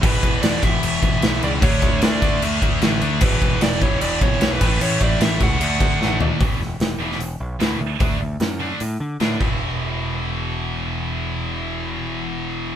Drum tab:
CC |x-x-x-x-x-x-x-x-|x-x-x-x-x-x-x-x-|x-x-x-x-x-x-x-x-|x-x-x-x-x-x-----|
HH |----------------|----------------|----------------|----------------|
SD |----o-------o---|----o-------o---|----o-------o---|----o-------o---|
FT |----------------|----------------|----------------|--------------o-|
BD |o-o---o---o-----|o-o---o---o-----|o-o---o---o---o-|--o---o---o-----|

CC |----------------|--------------x-|----------------|----------------|
HH |o---o---o---o---|o---o---o---o---|----------------|----------------|
SD |--o-o--o----o---|----o-------o---|----------------|----------------|
FT |----------------|----------------|----------------|----------------|
BD |o---------------|o-------------o-|----------------|----------------|